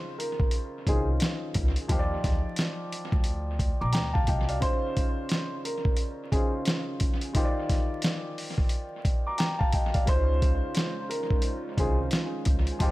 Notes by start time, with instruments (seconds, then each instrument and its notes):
Already playing: grand piano C#3 C#4 D#4 F4 C5, upright piano C5
0.18 upright piano A#4, closed hi-hat
0.40 kick
0.51 closed hi-hat
0.87 upright bass C2, grand piano D#3 C#4 D#4 F4 C5, upright piano G#4, kick, closed hi-hat
1.20 snare, closed hi-hat
1.54 upright bass C#2, kick, closed hi-hat
1.76 closed hi-hat
1.88 upright bass D#2, grand piano F3 D#4 F4 G4, kick, closed hi-hat
1.93 grand piano C5
1.99 grand piano D5
2.24 upright bass D2, kick, snare, closed hi-hat
2.56 snare, closed hi-hat
2.92 closed hi-hat
3.12 upright bass D2, kick
3.24 closed hi-hat
3.59 kick, closed hi-hat
3.81 upright bass A#1, grand piano A#5 D6
3.93 upright bass D2, grand piano G5 A#5, snare, closed hi-hat
4.13 grand piano F5 A5, kick
4.27 upright bass C2, grand piano D#5 G5, kick, closed hi-hat
4.49 grand piano D5 F5, closed hi-hat
4.60 grand piano C#3 C#4 D#4 F4, upright piano C5, kick, closed hi-hat
4.64 grand piano C5
4.97 kick, closed hi-hat
5.29 snare, closed hi-hat
5.65 upright piano A#4, closed hi-hat
5.85 kick
5.97 closed hi-hat
6.32 grand piano C#3 C#4 D#4 F4 C5, upright piano G#4, kick, closed hi-hat
6.65 snare, closed hi-hat
7.00 kick, closed hi-hat
7.21 closed hi-hat
7.34 grand piano D#3 D#4 F4 G4, kick, closed hi-hat
7.38 grand piano C5
7.44 grand piano D5
7.70 kick, snare, closed hi-hat
8.02 snare, closed hi-hat
8.38 open hi-hat
8.58 kick
8.69 closed hi-hat
9.05 kick, closed hi-hat
9.27 grand piano A#5 D6
9.38 grand piano G5 A#5, snare, closed hi-hat
9.59 grand piano F5 A5, kick
9.72 grand piano D#5 G5, kick, closed hi-hat
9.94 grand piano D5 F5, kick, closed hi-hat
10.05 upright bass C#2, grand piano C#3 C#4 D#4 F4, analog synth pad G#3 C#4 D#4 F4 C5, upright piano C5, kick, closed hi-hat
10.10 grand piano C5
10.42 kick, closed hi-hat
10.75 snare, closed hi-hat
11.10 upright piano A#4, closed hi-hat
11.30 kick
11.42 closed hi-hat
11.78 upright bass C2, grand piano D#3 C#4 D#4 F4 C5, upright piano G#4, kick, closed hi-hat
12.11 snare, closed hi-hat
12.45 upright bass C#2, kick, closed hi-hat
12.67 closed hi-hat
12.79 upright bass D#2, grand piano F3 D#4 F4 G4, analog synth pad A#3 D#4 F4 G4 D5, kick, closed hi-hat
12.84 grand piano C5